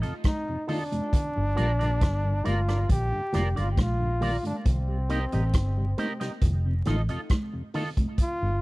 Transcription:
0.02 tonewheel organ F2 C3, clean electric guitar F4 A4 D#5, closed hi-hat
0.24 trombone D#4, kick, cross-stick, closed hi-hat, high conga
0.48 tonewheel organ F2 C3
0.67 tonewheel organ A3 D#4 F4, trombone D4, clean electric guitar F4 A4 D#5, open hi-hat, low conga
0.92 tonewheel organ F2 C3, closed hi-hat, high conga
1.13 kick, closed hi-hat, low conga
1.36 fingered electric bass G1, tonewheel organ G2 D3
1.56 fingered electric bass A#1, tonewheel organ G3 A#3 F4, clean electric guitar F4 A#4 D5, closed hi-hat
1.79 tonewheel organ G2 D3, clean electric guitar F4 A#4 D5, closed hi-hat
2.01 fingered electric bass G1, kick, cross-stick, closed hi-hat
2.24 tonewheel organ G2 D3
2.44 fingered electric bass G1, tonewheel organ G3 A#3 F4, clean electric guitar F4 A#4 D5, trombone F4, closed hi-hat, high conga
2.68 tonewheel organ G2 D3, clean electric guitar F4 A#4 D5, cross-stick, closed hi-hat
2.89 fingered electric bass A#1, trombone G4, kick, closed hi-hat, low conga
3.12 tonewheel organ G2 D3
3.32 fingered electric bass F1, tonewheel organ G3 A#3 F4, clean electric guitar F4 A#4 D5, cross-stick, closed hi-hat, high conga, low conga
3.55 fingered electric bass G1, tonewheel organ G2 D3, clean electric guitar F4 A#4 D5, trombone F4, closed hi-hat
3.72 trombone G4
3.77 fingered electric bass A#1, trombone F4, kick, cross-stick, closed hi-hat, high conga
4.00 tonewheel organ G2 D3
4.20 tonewheel organ G3 A#3 F4, clean electric guitar F4 A#4 D5, open hi-hat, low conga
4.43 tonewheel organ G2 D3, trombone D4, closed hi-hat, high conga
4.65 fingered electric bass C2, trombone C4, kick, closed hi-hat, low conga
4.88 tonewheel organ C3 G3
5.09 tonewheel organ A#3 C4 D#4, clean electric guitar G4 A#4 D#5, closed hi-hat
5.32 fingered electric bass A1, tonewheel organ C3 G3, clean electric guitar G4 A#4 D#5, closed hi-hat
5.53 fingered electric bass G1, kick, cross-stick, closed hi-hat
5.77 tonewheel organ C3 G3
5.98 tonewheel organ A#3 C4 D#4, clean electric guitar G4 A#4 D#5, closed hi-hat, high conga
6.20 tonewheel organ C3 G3, clean electric guitar G4 A#4 D#5, cross-stick, closed hi-hat
6.41 fingered electric bass F1, kick, closed hi-hat, low conga
6.65 tonewheel organ F2 C3
6.85 fingered electric bass A1, tonewheel organ A3 D#4 F4, clean electric guitar F4 A4 D#5, cross-stick, closed hi-hat, high conga, low conga
7.09 tonewheel organ F2 C3, clean electric guitar F4 A4 D#5, closed hi-hat
7.29 kick, cross-stick, closed hi-hat, high conga
7.53 tonewheel organ F2 C3
7.74 tonewheel organ A3 D#4 F4, clean electric guitar F4 A4 D#5, open hi-hat, low conga
7.97 tonewheel organ F2 C3, kick, closed hi-hat, high conga
8.18 kick, closed hi-hat
8.22 trombone F4
8.42 fingered electric bass G1, tonewheel organ G2 D3

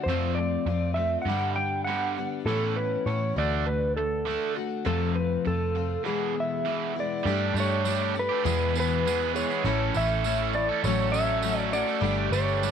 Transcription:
0.04 picked electric bass F2, electric slide guitar C5
0.08 twelve-string acoustic guitar F2 C3 F4, overdriven electric guitar F3 A3 C4
0.35 overdriven electric guitar F3, electric slide guitar D5
0.39 overdriven electric guitar A3
0.66 picked electric bass F2, overdriven electric guitar F3 A3, twelve-string acoustic guitar C4 F4
0.94 overdriven electric guitar F3 A3, twelve-string acoustic guitar F4, electric slide guitar E5
0.99 twelve-string acoustic guitar F3 C4
1.22 picked electric bass G2, electric slide guitar F#5
1.26 overdriven electric guitar G2 D3 G3, twelve-string acoustic guitar B3
1.30 twelve-string acoustic guitar D4 G4
1.56 overdriven electric guitar G2 D3, electric slide guitar G5
1.84 overdriven electric guitar G2 D3 G3, electric slide guitar F#5
1.89 twelve-string acoustic guitar B3 D4 G4
2.17 overdriven electric guitar G2 D3, twelve-string acoustic guitar G3 B3 D4 G4
2.46 picked electric bass A2, overdriven electric guitar A2 E3 A3, twelve-string acoustic guitar B3, electric slide guitar A4
2.50 twelve-string acoustic guitar C#4 E4
2.76 overdriven electric guitar A2 E3, electric slide guitar B4
3.06 picked electric bass A2, overdriven electric guitar A2 E3, twelve-string acoustic guitar B3 C#4 E4, electric slide guitar C#5
3.36 picked electric bass D2, overdriven electric guitar D3 A3 D4, twelve-string acoustic guitar F#4, electric slide guitar D5
3.67 overdriven electric guitar D3 A3, electric slide guitar B4
3.97 overdriven electric guitar D3 A3, electric slide guitar A4
4.25 overdriven electric guitar D3 A3 D4
4.31 twelve-string acoustic guitar F#4
4.56 overdriven electric guitar D3 A3, twelve-string acoustic guitar D4 F#4
4.86 overdriven electric guitar F2 C3 F3, picked electric bass F2, twelve-string acoustic guitar A3 C4 F4, electric slide guitar A4
5.15 overdriven electric guitar F2 C3, electric slide guitar B4
5.45 overdriven electric guitar F2 C3, picked electric bass F2, twelve-string acoustic guitar F3 A3 C4 F4, electric slide guitar A4
5.75 overdriven electric guitar F2 C3, twelve-string acoustic guitar F3 A3 C4 F4
6.04 overdriven electric guitar E2 B2 E3, twelve-string acoustic guitar G#3 B3, electric slide guitar G#4
6.08 twelve-string acoustic guitar E4
6.36 overdriven electric guitar E2 B2
6.40 electric slide guitar E5
6.65 overdriven electric guitar E2 B2 E3, twelve-string acoustic guitar G#3 B3 E4
6.95 overdriven electric guitar E2 B2, twelve-string acoustic guitar B3 E4
6.99 twelve-string acoustic guitar E3 G#3, electric slide guitar D5
7.23 picked electric bass G2, overdriven electric guitar G3 A3 D4 G4, reed electric piano D4 G4 A4, tonewheel organ D4 G4 A4 A5, tambourine
7.53 picked electric bass G2, overdriven electric guitar G3 A3 D4 G4, tambourine
7.60 electric slide guitar C#5
7.84 overdriven electric guitar G3 A3 D4 G4, tambourine
7.99 overdriven electric guitar A3 D4 G4, tambourine
8.14 twelve-string acoustic guitar A3 D4 G4, muted overdriven electric guitar stroke, tambourine
8.19 electric slide guitar B4
8.29 overdriven electric guitar A3 D4 G4
8.43 overdriven electric guitar E2 B2 E3 G#3 B3 G#4, picked electric bass E2, reed electric piano B3 E4 G#4, tonewheel organ G#4 B4 E5 B5, tambourine
8.59 overdriven electric guitar E3 G#3 B3 G#4
8.74 overdriven electric guitar E3 G#3 B3 G#4, reed electric piano B3 E4 G#4, tambourine
8.80 electric slide guitar B4
9.04 overdriven electric guitar E2 B2 E3 G#3 B3 G#4, tambourine
9.21 overdriven electric guitar E3 G#3 B3 G#4, tambourine
9.34 twelve-string acoustic guitar G#3 B3 G#4, reed electric piano B3 E4 G#4, electric slide guitar C#5, tambourine
9.38 twelve-string acoustic guitar E3
9.50 overdriven electric guitar E3 G#3 B3 G#4, tambourine
9.63 picked electric bass A1, overdriven electric guitar A2 E3 A3 C#4 A4, reed electric piano C#4 E4 A4, twelve-string acoustic guitar E4, tonewheel organ A4 E5 C#6, tambourine
9.94 picked electric bass A1, overdriven electric guitar E3 A3 C#4, twelve-string acoustic guitar E4, electric slide guitar E5, tambourine
9.98 overdriven electric guitar A4
10.08 tambourine
10.24 overdriven electric guitar A2 E3 A3 C#4 A4, twelve-string acoustic guitar E4, tambourine
10.38 overdriven electric guitar C#4 A4, tambourine
10.42 overdriven electric guitar A3
10.53 twelve-string acoustic guitar E4, electric slide guitar D5, muted overdriven electric guitar stroke, tambourine
10.57 twelve-string acoustic guitar A3
10.69 overdriven electric guitar A3 C#4 A4
10.83 picked electric bass A1, overdriven electric guitar A2 F#3 A3 C#4 A4, reed electric piano C#4 F#4 A4, electric slide guitar C#5, tonewheel organ F#5, tambourine
10.87 twelve-string acoustic guitar F#4
10.98 overdriven electric guitar A3 C#4 A4, tambourine
11.12 overdriven electric guitar F#3 A3 C#4 A4, reed electric piano C#4 F#4 A4, electric slide guitar E5, tambourine
11.42 overdriven electric guitar A2 F#3 A3 C#4 A4, tambourine
11.47 twelve-string acoustic guitar F#4
11.56 overdriven electric guitar C#4 A4, electric slide guitar D5, tambourine
11.60 overdriven electric guitar A3
11.73 twelve-string acoustic guitar A3 F#4, reed electric piano C#4 F#4 A4, electric slide guitar D5, tambourine
11.87 overdriven electric guitar A3 C#4 A4, tambourine
12.00 picked electric bass G1, overdriven electric guitar G3 A3 D4 G4, reed electric piano D4 G4 A4, tonewheel organ D4 G5 A5
12.05 tambourine
12.31 picked electric bass G1, overdriven electric guitar G3 A3 D4, electric slide guitar C#5, tambourine
12.35 overdriven electric guitar G4
12.49 tambourine
12.61 overdriven electric guitar G3 A3 D4 G4, tambourine

